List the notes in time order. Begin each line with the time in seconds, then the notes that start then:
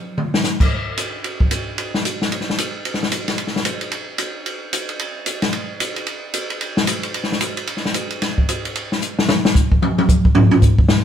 0.18 mid tom
0.34 snare
0.44 snare, hi-hat pedal
0.60 kick, crash
0.97 hi-hat pedal, ride
1.24 ride
1.40 kick
1.51 hi-hat pedal, ride
1.78 ride
1.94 snare
2.05 hi-hat pedal, ride
2.22 snare
2.32 ride
2.41 snare
2.50 snare
2.58 hi-hat pedal, ride
2.85 ride
2.94 snare
3.03 snare
3.12 hi-hat pedal, ride
3.28 snare, ride
3.38 ride
3.47 snare
3.56 snare
3.65 hi-hat pedal, ride
3.81 ride
3.91 ride
4.18 hi-hat pedal, ride
4.46 ride
4.73 hi-hat pedal, ride
4.89 ride
4.99 ride
5.26 hi-hat pedal, ride
5.42 snare, ride
5.53 ride
5.80 hi-hat pedal, ride
5.96 ride
6.07 ride
6.34 hi-hat pedal, ride
6.50 ride
6.61 ride
6.77 snare
6.87 hi-hat pedal, ride
7.03 ride
7.14 ride
7.24 snare
7.32 snare
7.41 hi-hat pedal, ride
7.57 ride
7.67 ride
7.77 snare
7.85 snare
7.94 hi-hat pedal, ride
8.10 ride
8.22 snare, ride
8.38 kick
8.49 hi-hat pedal, ride
8.65 ride
8.75 ride
8.92 snare
9.02 hi-hat pedal
9.19 snare
9.29 snare
9.45 snare
9.55 kick, hi-hat pedal
9.72 kick
9.82 high tom
9.98 high tom
10.09 kick, hi-hat pedal
10.25 kick
10.35 floor tom
10.51 floor tom
10.62 kick, hi-hat pedal
10.78 kick
10.88 snare